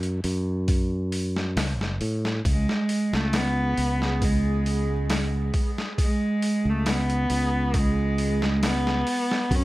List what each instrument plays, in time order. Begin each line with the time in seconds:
Already playing: fingered electric bass F#2
0.03 closed hi-hat
0.24 fingered electric bass F#2, open hi-hat
0.68 kick, open hi-hat
1.12 open hi-hat
1.37 snare
1.56 fingered electric bass C#2, snare, open hi-hat
1.80 fingered electric bass F#1, snare
2.01 fingered electric bass A2, open hi-hat
2.25 snare
2.44 fingered electric bass C#2, synth texture G#4, kick, open hi-hat
2.50 cello G#3
2.69 snare
2.89 open hi-hat
3.13 fingered electric bass C#2, cello A3, snare
3.33 cello B3, snare, open hi-hat
3.78 fingered electric bass C#2, open hi-hat
4.02 snare
4.22 cello G#3, kick, open hi-hat
4.66 open hi-hat
5.10 snare, open hi-hat
5.54 kick, open hi-hat
5.78 snare
5.98 cello G#3, kick, open hi-hat
6.42 open hi-hat
6.65 fingered electric bass C#2
6.70 cello A3
6.86 cello B3, snare, open hi-hat
7.10 closed hi-hat
7.30 fingered electric bass C#2, open hi-hat
7.74 kick, open hi-hat
7.78 cello G#3
8.18 open hi-hat
8.42 snare
8.63 cello B3, snare, open hi-hat
8.87 snare
9.07 open hi-hat
9.31 snare
9.51 fingered electric bass F#2, cello C#4, kick, open hi-hat